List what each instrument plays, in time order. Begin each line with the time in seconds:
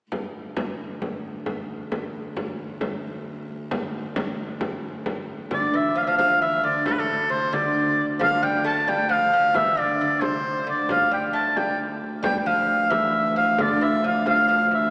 0.12 viola da gamba D2, frame drum
0.57 frame drum
0.79 frame drum
1.02 frame drum
1.46 frame drum
1.92 frame drum
2.15 frame drum
2.37 frame drum
2.81 frame drum
3.49 frame drum
3.71 frame drum
4.16 frame drum
4.61 frame drum
4.83 frame drum
5.06 frame drum
5.51 viola da gamba D2, lute D3, shawm D5, frame drum
5.74 lute E3, shawm E5
5.95 lute F3, shawm F5, frame drum
6.03 shawm E5
6.07 lute F3, shawm F5
6.17 lute F3, shawm F5, frame drum
6.41 lute E3, shawm E5
6.63 lute D3, shawm D5, frame drum
6.85 lute A2, shawm A4, frame drum
6.92 shawm B4
6.99 lute A2, shawm A4
7.29 lute C3, shawm C5, frame drum
7.53 lute D3, shawm D5, frame drum
8.19 lute F3, shawm F5, frame drum
8.43 lute G3, shawm G5
8.64 lute A3, shawm A5
8.88 lute G3, shawm G5, frame drum
9.09 lute F3, shawm F5
9.32 lute F3, frame drum
9.54 lute E3, shawm E5, frame drum
9.77 lute D3, shawm D5, frame drum
10.00 lute D3, frame drum
10.21 lute C3, shawm C5, frame drum
10.67 lute D3, shawm D5
10.89 viola da gamba D2, lute F3, shawm F5, frame drum
11.11 lute G3, shawm G5
11.33 lute A3, shawm A5, frame drum
11.56 lute G3, shawm G5, frame drum
12.01 frame drum
12.23 lute G3, shawm G5, frame drum
12.39 shawm G5
12.46 lute F3, shawm F5
12.69 frame drum
12.90 lute E3, shawm E5, frame drum
13.36 lute F3, shawm F5, frame drum
13.58 lute D3, shawm D5, frame drum
13.81 lute E3, shawm E5
14.04 lute F3, shawm F5, frame drum
14.26 lute F3, shawm F5, frame drum
14.49 lute F3
14.71 lute E3, shawm E5, frame drum